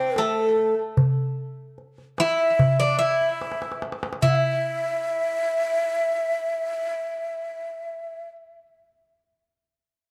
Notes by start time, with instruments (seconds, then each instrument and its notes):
Already playing: bouzouki C4, ney C5
0.16 bouzouki A3, ney A4, darbuka tek
0.56 darbuka ka
0.97 darbuka dum
1.78 darbuka ka
1.98 darbuka ka
2.18 bouzouki E4, ney E5, darbuka tek
2.59 darbuka dum
2.80 bouzouki D4, ney D5
2.99 bouzouki E4, ney E5, darbuka ka
3.21 darbuka ka
3.42 darbuka tek
3.52 darbuka ka
3.62 darbuka tek
3.72 darbuka ka
3.82 darbuka tek
3.92 darbuka ka
4.03 darbuka tek
4.13 darbuka ka
4.22 bouzouki E4, ney E5, darbuka dum
4.29 ney F#5
4.35 ney E5